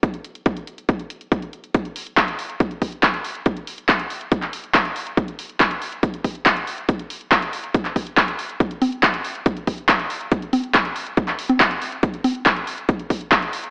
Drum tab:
HH |xxxxxxxxxxxxxxxx|xxoxxxoxxxoxxxox|xxoxxxoxxxoxxxox|xxoxxxoxxxoxxxox|
CP |----------------|----x-------x---|----x----x--x---|----x-------x---|
CG |----------------|----------------|----------------|----------------|
BD |o---o---o---o---|o---o---o-o-o---|o---o---o---o---|o---o---o-o-o---|

HH |xxoxxxoxxxoxxxox|xxoxxxoxxxoxxxox|xxoxxxoxxxoxxxox|xxoxxxoxxxoxxxox|
CP |----x----x--x---|----x-------x---|----x----x--x---|----x-------x---|
CG |----------------|--o-------------|--o--------o----|--o-------------|
BD |o---o---o-o-o---|o---o---o-o-o---|o---o---o---o---|o---o---o-o-o---|